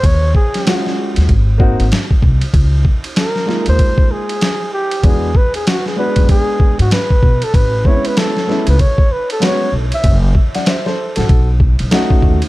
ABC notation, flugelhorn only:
X:1
M:4/4
L:1/16
Q:"Swing 16ths" 1/4=96
K:Amix
V:1 name="Flugelhorn"
c2 ^G4 z8 z2 | z4 ^A3 =c3 ^G4 =G2 | ^G2 B G F G B2 G3 F B3 A | B2 c B A3 B c2 B A c2 z e- |
e z12 z3 |]